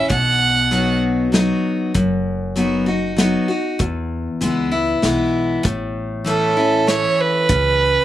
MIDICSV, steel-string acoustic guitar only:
0, 0, Header, 1, 2, 480
1, 0, Start_track
1, 0, Tempo, 616016
1, 76, Time_signature, 3, 2, 24, 8
1, 6269, End_track
2, 0, Start_track
2, 0, Title_t, "Steel-string acoustic guitar"
2, 0, Program_c, 0, 25
2, 74, Note_on_c, 0, 47, 76
2, 552, Note_on_c, 0, 54, 49
2, 554, Note_on_c, 0, 59, 58
2, 562, Note_on_c, 0, 63, 61
2, 568, Note_on_c, 0, 66, 58
2, 988, Note_off_c, 0, 47, 0
2, 1011, Note_off_c, 0, 54, 0
2, 1011, Note_off_c, 0, 59, 0
2, 1015, Note_off_c, 0, 63, 0
2, 1019, Note_off_c, 0, 66, 0
2, 1028, Note_on_c, 0, 54, 53
2, 1036, Note_on_c, 0, 59, 47
2, 1040, Note_on_c, 0, 63, 57
2, 1047, Note_on_c, 0, 66, 57
2, 1489, Note_off_c, 0, 54, 0
2, 1493, Note_off_c, 0, 59, 0
2, 1494, Note_off_c, 0, 63, 0
2, 1498, Note_off_c, 0, 66, 0
2, 1515, Note_on_c, 0, 42, 71
2, 1992, Note_on_c, 0, 54, 48
2, 1998, Note_on_c, 0, 59, 52
2, 2005, Note_on_c, 0, 63, 56
2, 2008, Note_on_c, 0, 66, 54
2, 2220, Note_off_c, 0, 66, 0
2, 2225, Note_off_c, 0, 54, 0
2, 2228, Note_off_c, 0, 59, 0
2, 2230, Note_on_c, 0, 66, 54
2, 2232, Note_off_c, 0, 63, 0
2, 2246, Note_on_c, 0, 63, 43
2, 2429, Note_off_c, 0, 42, 0
2, 2464, Note_off_c, 0, 66, 0
2, 2466, Note_on_c, 0, 54, 51
2, 2472, Note_off_c, 0, 63, 0
2, 2477, Note_on_c, 0, 59, 54
2, 2481, Note_on_c, 0, 63, 55
2, 2485, Note_on_c, 0, 66, 49
2, 2703, Note_off_c, 0, 54, 0
2, 2704, Note_off_c, 0, 66, 0
2, 2708, Note_off_c, 0, 59, 0
2, 2710, Note_off_c, 0, 63, 0
2, 2713, Note_on_c, 0, 66, 50
2, 2729, Note_on_c, 0, 63, 42
2, 2946, Note_off_c, 0, 66, 0
2, 2954, Note_off_c, 0, 63, 0
2, 2954, Note_on_c, 0, 40, 71
2, 3434, Note_on_c, 0, 52, 51
2, 3443, Note_on_c, 0, 56, 54
2, 3448, Note_on_c, 0, 59, 63
2, 3451, Note_on_c, 0, 64, 55
2, 3664, Note_off_c, 0, 64, 0
2, 3666, Note_off_c, 0, 52, 0
2, 3671, Note_off_c, 0, 56, 0
2, 3673, Note_off_c, 0, 59, 0
2, 3674, Note_on_c, 0, 64, 55
2, 3689, Note_on_c, 0, 59, 44
2, 3868, Note_off_c, 0, 40, 0
2, 3906, Note_off_c, 0, 64, 0
2, 3913, Note_on_c, 0, 52, 50
2, 3914, Note_off_c, 0, 59, 0
2, 3922, Note_on_c, 0, 56, 52
2, 3923, Note_on_c, 0, 59, 53
2, 3932, Note_on_c, 0, 64, 59
2, 4372, Note_off_c, 0, 52, 0
2, 4376, Note_off_c, 0, 56, 0
2, 4377, Note_off_c, 0, 59, 0
2, 4381, Note_off_c, 0, 64, 0
2, 4389, Note_on_c, 0, 45, 77
2, 4866, Note_on_c, 0, 52, 54
2, 4876, Note_on_c, 0, 57, 64
2, 4881, Note_on_c, 0, 61, 54
2, 4886, Note_on_c, 0, 64, 67
2, 5102, Note_off_c, 0, 52, 0
2, 5107, Note_off_c, 0, 57, 0
2, 5108, Note_off_c, 0, 64, 0
2, 5109, Note_off_c, 0, 61, 0
2, 5117, Note_on_c, 0, 64, 56
2, 5133, Note_on_c, 0, 61, 50
2, 5305, Note_off_c, 0, 45, 0
2, 5348, Note_off_c, 0, 64, 0
2, 5354, Note_on_c, 0, 52, 51
2, 5355, Note_off_c, 0, 61, 0
2, 5363, Note_on_c, 0, 57, 52
2, 5367, Note_on_c, 0, 61, 58
2, 5372, Note_on_c, 0, 64, 61
2, 5811, Note_off_c, 0, 52, 0
2, 5816, Note_off_c, 0, 57, 0
2, 5817, Note_off_c, 0, 61, 0
2, 5820, Note_off_c, 0, 64, 0
2, 5836, Note_on_c, 0, 49, 79
2, 6269, Note_off_c, 0, 49, 0
2, 6269, End_track
0, 0, End_of_file